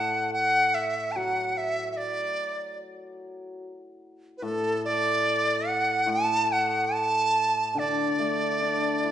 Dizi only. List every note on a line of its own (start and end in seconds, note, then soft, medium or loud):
0.00 0.31 F#5 medium
0.33 0.76 F#5 medium
0.74 1.13 E5 medium
1.11 1.18 A5 medium
1.16 1.59 F#5 medium
1.57 1.91 E5 medium
1.92 1.98 E5 soft
1.97 2.80 D5 medium
4.38 4.45 B4 medium
4.43 4.84 A4 medium
4.85 5.70 D5 medium
5.68 6.11 F#5 medium
6.10 6.54 A5 loud
6.52 6.96 F#5 medium
6.94 7.80 A5 medium
7.79 9.12 D5 medium